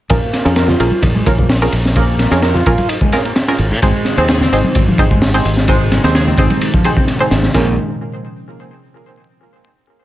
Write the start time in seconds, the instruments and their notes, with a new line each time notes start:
0.10 fingered electric bass A#1, analog synth lead A#3, synth stab C#4 F4 G#4 A#4, kick, ride
0.33 snare, ride
0.45 fingered electric bass F2, analog synth lead C#4, synth stab C#4 F4 G#4 A#4, ride
0.56 analog synth lead A#4, snare, ride
0.68 analog synth lead F4, snare, low conga
0.80 fingered electric bass A#1, synth stab C#4 F4 G#4 A#4, ride
0.91 high conga
1.03 fingered electric bass A#1, analog synth lead D#4, kick, ride
1.15 analog synth lead G#3, high conga
1.26 fingered electric bass A#1, synth stab C#4 F4 G#4 A#4, kick, ride
1.38 analog synth lead A#3, kick, high conga
1.49 snare, open hi-hat
1.62 synth stab C#4 F4 G#4 A#4
1.72 fingered electric bass A#1, ride
1.85 snare
1.96 analog synth lead A#3, synth stab C#4 F4 G#4 A#4, kick, ride
2.19 snare, ride, high conga
2.31 fingered electric bass F2, analog synth lead C#4, synth stab C#4 F4 G#4 A#4, snare
2.42 analog synth lead A#4, snare, ride
2.54 analog synth lead F4, snare, low conga
2.66 fingered electric bass A#1, synth stab C#4 F4 G#4 A#4, kick, ride
2.78 ride, high conga
2.88 analog synth lead D#4, ride
3.01 analog synth lead G#3, kick
3.12 synth stab C#4 F4 G#4 A#4, snare, ride
3.24 analog synth lead A#3, ride
3.36 snare, ride
3.48 synth stab C#4 F4 G#4 A#4, snare
3.58 fingered electric bass G#1, ride
3.71 fingered electric bass A#2
3.82 fingered electric bass G#1, ambient pad C3 D#3 G#3 D#4, analog synth lead G#3, synth stab C4 D#4 G#4 C5, kick, ride
4.05 snare, ride
4.17 fingered electric bass D#2, analog synth lead C4, synth stab C4 D#4 G#4 C5, ride
4.28 analog synth lead G#4, snare, ride
4.41 analog synth lead C4, snare, low conga
4.52 fingered electric bass G#1, synth stab C4 D#4 G#4 C5, ride
4.64 high conga
4.75 fingered electric bass G#1, analog synth lead C4, kick, ride
4.88 analog synth lead F3, high conga
4.98 fingered electric bass G#1, synth stab C4 D#4 G#4 C5, kick, ride
5.10 analog synth lead G#3, kick, high conga
5.22 snare, open hi-hat
5.34 synth stab C4 D#4 G#4 C5
5.45 fingered electric bass G#1, ride
5.57 snare
5.68 analog synth lead G#3, synth stab C4 D#4 G#4 C5, kick, ride
5.92 snare, ride, high conga
6.04 fingered electric bass D#2, analog synth lead C4, synth stab C4 D#4 G#4 C5, snare
6.15 analog synth lead G#4, snare, ride
6.26 analog synth lead C4, snare, low conga
6.37 fingered electric bass G#1, synth stab C4 D#4 G#4 C5, kick, ride
6.50 ride, high conga
6.61 analog synth lead C4, ride
6.73 analog synth lead F3, kick
6.84 synth stab C4 D#4 G#4 C5, ride
6.96 analog synth lead C4, kick
7.07 snare, ride
7.19 synth stab C4 D#4 G#4 C5, ride
7.31 fingered electric bass G#1, snare, ride
7.43 snare
7.54 fingered electric bass A#1, ambient pad A#2 F3 G#3 C#4, analog synth lead A#3, synth stab C#4 F4 G#4 A#4, kick, snare, ride bell